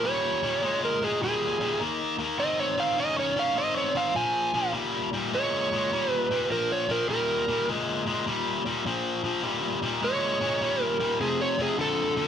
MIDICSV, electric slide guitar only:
0, 0, Header, 1, 2, 480
1, 0, Start_track
1, 0, Tempo, 587084
1, 1475, Time_signature, 4, 2, 24, 8
1, 10037, End_track
2, 0, Start_track
2, 0, Title_t, "Electric slide guitar"
2, 0, Program_c, 0, 29
2, 44, Note_on_c, 0, 73, 93
2, 661, Note_off_c, 0, 73, 0
2, 693, Note_on_c, 0, 70, 71
2, 840, Note_off_c, 0, 70, 0
2, 850, Note_on_c, 0, 68, 74
2, 998, Note_off_c, 0, 68, 0
2, 1013, Note_on_c, 0, 68, 82
2, 1469, Note_off_c, 0, 68, 0
2, 1960, Note_on_c, 0, 75, 96
2, 2112, Note_off_c, 0, 75, 0
2, 2122, Note_on_c, 0, 73, 74
2, 2273, Note_off_c, 0, 73, 0
2, 2288, Note_on_c, 0, 77, 83
2, 2436, Note_off_c, 0, 77, 0
2, 2450, Note_on_c, 0, 75, 90
2, 2598, Note_off_c, 0, 75, 0
2, 2611, Note_on_c, 0, 73, 81
2, 2758, Note_off_c, 0, 73, 0
2, 2774, Note_on_c, 0, 77, 77
2, 2919, Note_off_c, 0, 77, 0
2, 2929, Note_on_c, 0, 75, 86
2, 3077, Note_off_c, 0, 75, 0
2, 3086, Note_on_c, 0, 73, 70
2, 3235, Note_off_c, 0, 73, 0
2, 3246, Note_on_c, 0, 77, 75
2, 3395, Note_off_c, 0, 77, 0
2, 3401, Note_on_c, 0, 80, 95
2, 3863, Note_off_c, 0, 80, 0
2, 4372, Note_on_c, 0, 73, 102
2, 4993, Note_off_c, 0, 73, 0
2, 4993, Note_on_c, 0, 71, 102
2, 5295, Note_off_c, 0, 71, 0
2, 5328, Note_on_c, 0, 70, 81
2, 5477, Note_off_c, 0, 70, 0
2, 5495, Note_on_c, 0, 73, 93
2, 5640, Note_off_c, 0, 73, 0
2, 5652, Note_on_c, 0, 70, 88
2, 5799, Note_off_c, 0, 70, 0
2, 5809, Note_on_c, 0, 70, 84
2, 6268, Note_off_c, 0, 70, 0
2, 8212, Note_on_c, 0, 73, 102
2, 8866, Note_off_c, 0, 73, 0
2, 8866, Note_on_c, 0, 70, 102
2, 9135, Note_off_c, 0, 70, 0
2, 9165, Note_on_c, 0, 68, 74
2, 9315, Note_off_c, 0, 68, 0
2, 9332, Note_on_c, 0, 73, 88
2, 9479, Note_off_c, 0, 73, 0
2, 9498, Note_on_c, 0, 68, 86
2, 9642, Note_off_c, 0, 68, 0
2, 9656, Note_on_c, 0, 69, 96
2, 10037, Note_off_c, 0, 69, 0
2, 10037, End_track
0, 0, End_of_file